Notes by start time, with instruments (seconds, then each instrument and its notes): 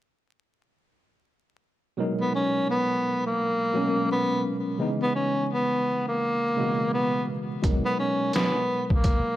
1.97 tine electric piano B2 F#3 G#3 D#4 A#4
2.20 tenor saxophone B3
2.35 tenor saxophone C#4
2.70 tenor saxophone B3
3.26 tenor saxophone A#3
3.73 tine electric piano B2 F#3 G#3 C#4 A#4
4.11 tenor saxophone B3
4.78 tine electric piano C#3 E3 G#3 B3 D#4
5.02 tenor saxophone B3
5.15 tenor saxophone C#4
5.53 tenor saxophone B3
6.08 tenor saxophone A#3
6.56 tine electric piano B2 C#3 E3 G#3 F#4
6.94 tenor saxophone B3
7.62 tine electric piano B2 F#3 G#3 D#4 A#4, kick, closed hi-hat
7.85 tenor saxophone B3
7.99 tenor saxophone C#4
8.33 tenor saxophone B3, snare, closed hi-hat
8.90 tenor saxophone A#3, kick
9.04 kick, closed hi-hat